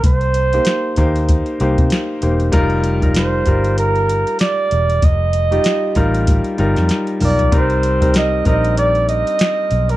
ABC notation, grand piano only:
X:1
M:4/4
L:1/16
Q:"Swing 16ths" 1/4=96
K:Cm
V:1 name="Grand piano"
z3 [B,EGc]2 z [B,EGc]3 z [B,EGc]3 z [B,EGc] z | [G,EFB]2 z [G,EFB]2 z [G,EFB]6 z4 | z3 [G,EFG]2 z [G,EFB]3 z [G,EFB]3 z [G,EFB] z | [G,CEB]2 z [G,CEB]2 z [G,CDEB]6 z4 |]